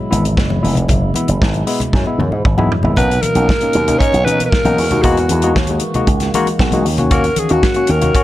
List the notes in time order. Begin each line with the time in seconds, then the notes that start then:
Already playing: B2 F#3 G#3 E4
0.10 G#1 G#3 B3 E4, closed hi-hat, high conga
0.25 closed hi-hat, high conga
0.36 F#1 B3 E4, kick, snare
0.49 F#3, high conga
0.63 F1 G#3 B3 E4, open hi-hat
0.75 closed hi-hat, low conga
0.88 F#1 F#3, kick, closed hi-hat, muted conga, low conga
1.14 B3 E4, closed hi-hat, high conga
1.28 F#1, closed hi-hat
1.41 G#1 B3 E4, kick, snare
1.54 F#3, closed hi-hat
1.67 G#3 B3 E4, open hi-hat
1.80 closed hi-hat, low conga
1.93 F#2 F#3, kick, snare
2.06 G#3 B3 E4, muted conga
2.18 F#2 B3 E4, high tom, high conga
2.31 G#2, high conga
2.45 G#1, kick, mid tom
2.57 B1 G#3 B3 E4, mid tom, muted conga, high conga
2.71 F#3, floor tom
2.83 G#1 G#3 B3 E4, floor tom, low conga
2.96 B1 B2 A#3 C#4 D#4 B4, kick, closed hi-hat, muted conga, low conga
3.10 closed hi-hat, muted conga
3.22 B2 F#3 A#4, closed hi-hat, high conga
3.35 B1 A#3 C#4 D#4, closed hi-hat
3.49 kick, snare
3.60 A#3 C#4 D#4, closed hi-hat, muted conga
3.73 D#2 B2 F#3, closed hi-hat
3.88 A#3 C#4 D#4, closed hi-hat, low conga
3.99 C#4 D#4 C#5, kick, closed hi-hat
4.13 B1 B2 F#3, closed hi-hat, muted conga
4.25 B2 C#4 D#4 B4, closed hi-hat, high conga
4.40 closed hi-hat, high conga
4.46 B4
4.50 A#4, kick, snare
4.65 B1 A#3 C#4 D#4, closed hi-hat, high conga
4.78 E2 D#3 E3 G#3 A#3 F#4, open hi-hat
4.91 D#2 G#3 A#3 D#4 F#4, closed hi-hat, low conga
5.03 E2 G#3 A#3 D#4 F#4, kick, closed hi-hat, low conga
5.17 closed hi-hat
5.29 E2 E3, closed hi-hat, high conga
5.42 G#3 A#3 D#4 F#4, closed hi-hat
5.56 D#2, kick, snare, muted conga
5.67 G#3 A#3 D#4 F#4, closed hi-hat, muted conga
5.80 E3, closed hi-hat
5.94 G#3 A#3 D#4 F#4, closed hi-hat, low conga
6.07 C#2, kick, closed hi-hat
6.20 snare, closed hi-hat, muted conga
6.34 G#3 A#3 D#4 F#4, closed hi-hat, high conga
6.46 closed hi-hat, high conga
6.59 B1, kick, snare, muted conga
6.72 G#3 A#3 D#4 F#4, closed hi-hat, high conga
6.86 D#2 D#3 C#4, open hi-hat
6.98 A#3 C#4 F#4, closed hi-hat, low conga
7.11 A#3 C#4 F#4 A#4, kick, closed hi-hat, muted conga, low conga
7.24 closed hi-hat, muted conga
7.36 D#3 G#4, closed hi-hat, high conga
7.49 D#2 A#3 C#4 F#4, closed hi-hat
7.63 kick, snare, muted conga
7.74 A#3 C#4 F#4, closed hi-hat, muted conga
7.87 D#2 D#3 A#4, closed hi-hat
8.01 A#3 C#4 F#4, closed hi-hat, low conga
8.15 C#4 F#4, kick, closed hi-hat, muted conga